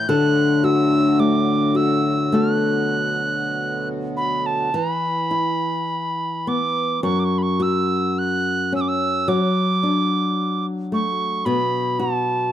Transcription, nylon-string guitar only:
0.00 0.20 A2 medium
0.00 0.12 C#4 medium
0.09 4.74 D3 medium
0.09 2.33 A4 medium
0.64 1.74 F#4 medium
1.19 2.31 A3 medium
1.75 2.32 F#4 medium
2.32 4.85 A3 medium
2.32 4.86 F#4 medium
2.32 4.86 A4 medium
4.74 7.14 E3 medium
5.31 7.14 E4 soft
6.47 7.15 B3 soft
7.03 9.39 F#2 medium
7.60 11.10 F#4 medium
8.72 9.39 C#4 soft
9.28 12.52 F#3 medium
9.83 12.52 D4 soft
10.92 11.56 A3 soft
11.46 12.52 B2 medium
11.99 12.52 F#4 medium

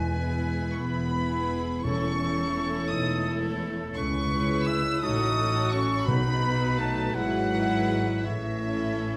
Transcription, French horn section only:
0.00 0.79 G#3 medium
0.80 1.85 B3 loud
1.84 2.92 C#4 loud
2.91 3.27 D#4 loud
3.96 4.63 C#4 loud
4.66 5.03 E4 loud
5.01 5.71 D#4 loud
5.72 6.07 C#4 loud
6.06 6.79 B3 loud
6.77 7.15 A3 loud
7.14 8.25 F#3 loud
8.25 9.17 E3 medium

